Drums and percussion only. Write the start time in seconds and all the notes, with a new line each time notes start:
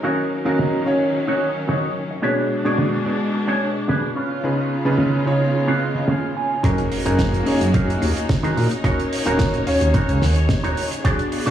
0.59 snare
1.69 snare
2.78 snare
3.89 snare
4.98 snare
5.95 snare
6.08 snare
6.64 kick, cross-stick, closed hi-hat
6.78 closed hi-hat
6.92 open hi-hat
7.06 closed hi-hat
7.19 kick, snare, closed hi-hat
7.34 closed hi-hat
7.46 open hi-hat
7.61 closed hi-hat
7.74 kick, closed hi-hat
7.90 closed hi-hat
8.02 cross-stick, open hi-hat
8.17 closed hi-hat
8.29 kick, snare, closed hi-hat
8.44 closed hi-hat
8.57 open hi-hat
8.71 closed hi-hat
8.84 kick, cross-stick, closed hi-hat
9.00 closed hi-hat
9.13 open hi-hat
9.26 closed hi-hat
9.39 kick, snare, closed hi-hat
9.54 closed hi-hat
9.67 open hi-hat
9.81 closed hi-hat
9.94 kick, closed hi-hat
10.09 closed hi-hat
10.22 snare, open hi-hat
10.36 closed hi-hat
10.49 kick, snare, closed hi-hat
10.64 closed hi-hat
10.77 open hi-hat
10.91 cross-stick, closed hi-hat
11.05 kick, cross-stick, closed hi-hat
11.19 closed hi-hat
11.32 open hi-hat
11.47 closed hi-hat